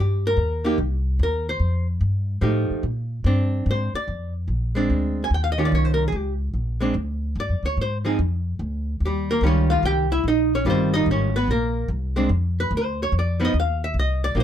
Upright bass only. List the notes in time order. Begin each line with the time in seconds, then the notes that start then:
Already playing: G2
0.37 D#2
0.78 C2
1.19 D#2
1.60 F2
2.01 G2
2.42 A2
2.70 muted upright bass stroke
2.83 A#2
3.24 G2
3.66 G#2
3.94 muted upright bass stroke
4.08 F2
4.48 A#1
4.90 D2
5.30 D#2
5.72 C2
6.12 C#2
6.54 A#1
6.94 D2
7.36 G2
7.49 F2
7.63 D2
7.77 G#2
8.19 F2
8.59 D2
9.00 D#2
9.41 C#2
9.83 C2
10.24 A#1
10.65 G1
11.06 G#1
11.48 A#1
11.88 C2
12.29 F2
12.71 D2
13.12 F2
13.54 D#2
13.94 C2
14.35 A#1